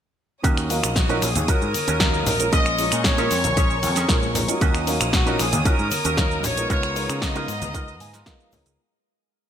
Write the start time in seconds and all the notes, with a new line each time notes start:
0.43 D#2 C#4 D#4 F#4 A#4 C#5 D#6, kick, closed hi-hat, shaker
0.57 finger snap, shaker
0.70 F#3 C#4 D#4 A#4 F5, open hi-hat, shaker
0.84 A#1, finger snap, closed hi-hat, shaker
0.96 F#4, kick, snare, closed hi-hat, shaker
1.09 F#3 C#4 D#4 F4 F#4 A#4, closed hi-hat, shaker
1.22 A#1 G#4, finger snap, open hi-hat, shaker
1.35 D#2, closed hi-hat, high conga, low conga, shaker
1.48 F#3 C#4 D#4 F4 F#4 A#4, kick, closed hi-hat, shaker
1.62 G#2, shaker
1.74 open hi-hat, high conga, shaker
1.87 D#2 C#4 D#4 F#4 C#5, closed hi-hat, high bongo, shaker
2.00 F#3 C#4 D#4 A#4 F5, kick, snare, closed hi-hat, shaker
2.14 shaker
2.26 A#1 A#4, muted clean electric guitar stroke, open hi-hat, high bongo, low conga, shaker
2.39 G#3 A#3 C#4 F4 A#4, closed hi-hat, shaker
2.52 A#1 C#4 F4 G#4 A#4 D#5 G#5 C#6, kick, closed hi-hat, shaker
2.66 finger snap, shaker
2.78 G#3 A#3 C#4 F4 A#4, open hi-hat, shaker
2.92 A#2, finger snap, closed hi-hat, shaker
3.04 C#5, kick, snare, closed hi-hat, shaker
3.18 G#3 A#3 C#4 F4 G#4 A#4, closed hi-hat, high bongo, shaker
3.31 F2, open hi-hat, shaker
3.44 A#1, closed hi-hat, high conga, low conga, shaker
3.57 G#3 A#3 C#4 F4 G#4 A#4 C#5, kick, closed hi-hat, shaker
3.70 shaker
3.83 F2, open hi-hat, high conga, shaker
3.96 C#4 F4 G#4 A#4, snare, closed hi-hat, shaker
4.09 A#1 G#3 A#3 C#4 F4 A#4, kick, snare, closed hi-hat, shaker
4.23 shaker
4.35 muted clean electric guitar stroke, open hi-hat, low conga, shaker
4.48 F#3 C#4 D#4 F4 A#4, closed hi-hat, shaker
4.61 D#2 C#4 D#4 F#4 A#4 C#5 D#6, kick, closed hi-hat, shaker
4.75 finger snap, shaker
4.87 F#3 C#4 D#4 A#4 F5, open hi-hat, shaker
5.00 A#1, finger snap, closed hi-hat, shaker
5.13 F#4, kick, snare, closed hi-hat, shaker
5.26 F#3 C#4 D#4 F4 F#4 A#4, closed hi-hat, shaker
5.39 A#1 G#4, finger snap, open hi-hat, shaker
5.53 D#2, closed hi-hat, high conga, low conga, shaker
5.65 F#3 C#4 D#4 F4 F#4 A#4, muted picked electric bass stroke, kick, closed hi-hat, shaker
5.79 G#2, shaker
5.91 open hi-hat, high conga, shaker
6.04 D#2 C#4 D#4 F#4 A#4, closed hi-hat, high bongo, shaker
6.17 F#3 C#4 D#4 A#4 F5, kick, snare, closed hi-hat, shaker
6.31 shaker
6.43 A#1 C#5, muted clean electric guitar stroke, open hi-hat, high bongo, low conga, shaker
6.57 G#3 B3 D#4 F4 A#4, closed hi-hat, shaker
6.70 C#2 B3 D#4 F4 A#4 C#5 F5 A#5 D#6, kick, closed hi-hat, shaker
6.83 finger snap, shaker
6.95 G#3 B3 D#4 F4 A#4, open hi-hat, shaker
7.09 C#3, finger snap, closed hi-hat, shaker
7.22 D#5, kick, snare, open hi-hat, shaker
7.35 G#3 B3 D#4 F4 A#4, closed hi-hat, high bongo, shaker
7.48 G#2, open hi-hat, shaker
7.62 C#2, closed hi-hat, high conga, low conga, shaker
7.73 G#3 B3 D#4 F4 A#4, kick, closed hi-hat, shaker
7.88 shaker
8.00 G#2 G#5, open hi-hat, high conga, shaker
8.13 B3 D#4 F4 A#4, snare, closed hi-hat, shaker
8.26 G#3 B3 D#4 F4 A#4 F5, kick, snare, closed hi-hat, shaker
8.40 shaker
8.52 C#2 C#5, muted clean electric guitar stroke, open hi-hat, low conga, shaker
8.66 C#2, closed hi-hat, shaker